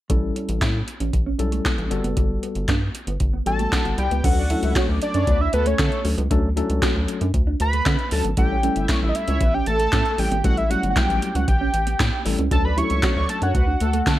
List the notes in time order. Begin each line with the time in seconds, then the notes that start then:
0.10 A1 G3 A3 C#4 E4 A4, kick, closed hi-hat
0.23 muted clean electric guitar stroke
0.36 C#4, closed hi-hat
0.49 A1, closed hi-hat
0.61 A2 E4, kick, snare, clap, closed hi-hat
0.87 muted clean electric guitar stroke, closed hi-hat
1.00 A1 C#4, closed hi-hat
1.13 A1, kick, closed hi-hat
1.26 C#4
1.39 B1 G3 C#4 E4 A4, muted clean electric guitar stroke, closed hi-hat
1.52 A3, closed hi-hat
1.65 C#4, kick, snare, clap, closed hi-hat
1.78 A1, closed hi-hat
1.90 G1 G3 B3 F#4 A4, muted clean electric guitar stroke, closed hi-hat
2.04 F#1 B3, closed hi-hat
2.17 G1 G3, kick, closed hi-hat
2.30 muted clean electric guitar stroke
2.43 B3, closed hi-hat
2.55 G1, closed hi-hat
2.68 G2 D4, kick, snare, clap, closed hi-hat
2.95 muted clean electric guitar stroke, closed hi-hat
3.07 G1 B3, closed hi-hat
3.20 G1, kick, closed hi-hat
3.33 B3
3.46 A1 G3 B3 F#4 A4 A5, muted clean electric guitar stroke, closed hi-hat
3.59 A3, closed hi-hat
3.72 D4 F#5, kick, snare, clap, closed hi-hat
3.85 G1 F#5, closed hi-hat
3.98 C2 D5 G5 B5, closed hi-hat
4.11 C#2 B3 B4, closed hi-hat
4.24 D2 F#3 A3 C#4 D4 A4 F#5, kick, closed hi-hat, crash
4.37 D4 D5, muted clean electric guitar stroke
4.50 F3 A3 C#4 D4 E4 A4, closed hi-hat
4.56 F#3
4.63 C#2 E4 E5, closed hi-hat
4.75 C#4 F#4 C#5, kick, snare, clap, closed hi-hat
4.88 D2 D4 D5
5.02 D5, muted clean electric guitar stroke, closed hi-hat
5.14 F#2 C#4 D4 C#5, closed hi-hat
5.27 D2 B3 B4, kick, closed hi-hat
5.40 D4 E5
5.53 D2 A3 A4 B4, muted clean electric guitar stroke, closed hi-hat
5.66 A3 C#5, closed hi-hat
5.79 D3 A3 C#4 A4, kick, snare, clap, closed hi-hat
5.92 closed hi-hat
6.05 D2 F#3 A3 C#4 D4 A4, muted clean electric guitar stroke, open hi-hat
6.18 C#2 B3, closed hi-hat
6.30 D2 F#3 A3 C#4 D4 A4, kick, closed hi-hat
6.44 muted clean electric guitar stroke
6.56 F#3 A3 C#4 D4 E4 A4, closed hi-hat
6.70 C#2, closed hi-hat
6.82 F#4, kick, snare, clap, closed hi-hat
6.95 D2
7.08 muted clean electric guitar stroke, closed hi-hat
7.21 F#2 D4, closed hi-hat
7.34 D2, kick, closed hi-hat
7.47 D4
7.60 D2 B5, muted clean electric guitar stroke, closed hi-hat
7.73 A3, closed hi-hat
7.86 D3 C#4, kick, snare, clap, closed hi-hat
7.99 closed hi-hat
8.11 D2 F#3 A3 C#4 D4 A4 A5, muted clean electric guitar stroke, open hi-hat
8.25 G#1 B3, closed hi-hat
8.37 A1 G3 A3 C#4 E4 A4 G5, kick, closed hi-hat
8.50 C#4 C#5, muted clean electric guitar stroke
8.63 G3 A3 C#4 E4 A4, closed hi-hat
8.76 G1 E4 E5, closed hi-hat
8.89 C#4 E4 C#5, kick, snare, clap, closed hi-hat
9.02 A1 E4 E5
9.09 D#5
9.15 E5, muted clean electric guitar stroke, closed hi-hat
9.28 C#2 C#4 C#5, closed hi-hat
9.41 A1 B3 B4, kick, closed hi-hat
9.54 C#4 G5
9.66 A1 A3 A4 A5, muted clean electric guitar stroke, closed hi-hat
9.80 A3, closed hi-hat
9.92 A2 A3 C#4 A4, kick, snare, clap, closed hi-hat
10.06 closed hi-hat
10.18 A1 G3 A3 C#4 E4 A4 G5, muted clean electric guitar stroke, open hi-hat
10.31 G#1 B3, closed hi-hat
10.44 A1 G3 A3 C#4 E4 A4 F#5, kick, closed hi-hat
10.57 E5, closed hi-hat
10.70 F#3 G3 A3 C#4 E4 F#5, closed hi-hat
10.83 G1, closed hi-hat
10.90 F#5
10.96 E4 G5, kick, snare, clap, closed hi-hat
11.09 A1, closed hi-hat
11.22 muted clean electric guitar stroke, closed hi-hat
11.35 C#2 C#4 F#5, closed hi-hat
11.48 A1 G5, kick, closed hi-hat
11.61 C#4
11.74 A1, closed hi-hat
11.87 B3, closed hi-hat
11.99 A2 A3, kick, snare, clap, closed hi-hat
12.25 A1 G3 A3 C#4 E4 A4, muted clean electric guitar stroke, open hi-hat
12.39 C#2 C#4, closed hi-hat
12.51 D2 F#3 A3 C#4 D4 A4 A5, kick, closed hi-hat
12.64 D4 D5 B5, muted clean electric guitar stroke
12.77 F#3 A3 C#4 D4 E4 G4 C#6, closed hi-hat
12.84 A4
12.90 C#2 E4 E5, closed hi-hat
13.03 C#4 F#4 C#5, kick, snare, clap, closed hi-hat
13.16 D2 D4 D5 C#6
13.29 A5, muted clean electric guitar stroke, closed hi-hat
13.42 F#2 C#4 D4 C#5 F#5, closed hi-hat
13.55 D2 B3 B4, kick, closed hi-hat
13.67 D4
13.80 D2 A3 A4, muted clean electric guitar stroke, closed hi-hat
13.93 A3, closed hi-hat
14.06 D3 A3 C#4 A4, kick, snare, clap, closed hi-hat